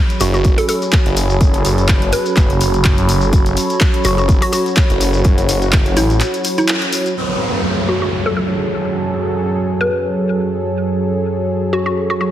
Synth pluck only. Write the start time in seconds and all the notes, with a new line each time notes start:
0.21 F#4
0.34 F#4
0.58 A4
0.69 A4
2.13 B4
4.05 F#4
4.18 F#4
4.42 F#4
4.53 F#4
5.97 E4
6.58 E4
7.89 F#4
8.02 F#4
8.26 A4
8.37 A4
9.81 B4
11.73 F#4
11.86 F#4
12.10 F#4
12.21 F#4